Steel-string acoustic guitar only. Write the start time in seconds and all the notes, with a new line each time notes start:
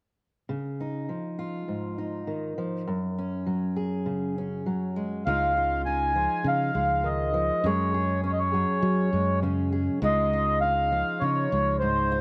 0.49 C#3
0.80 D#4
1.09 F3
1.39 F4
1.68 G#2
1.98 D#4
2.27 D#3
2.58 F3
2.87 F#2
3.18 C#4
3.46 F#3
3.76 G#4
4.06 C#3
4.38 C#4
4.66 F#3
4.96 G#3
5.27 C#3 G#3 D#4 F4
5.57 F4
5.86 D#4
6.15 F3 F4
6.46 D#4
6.75 G#3
7.04 D#3
7.34 F3
7.65 F#2 G#3 C#4 G#4
7.94 G#4
8.23 C#4
8.53 F#3 G#4
8.83 C#4
9.14 G#3
9.42 C#3 C#4
9.72 G#4
10.02 C#3 G#3 D#4 F4
10.33 F4
10.63 D#4
10.92 F3 F4
11.23 D#4
11.53 G#3
11.81 G#2 D#4
12.12 F4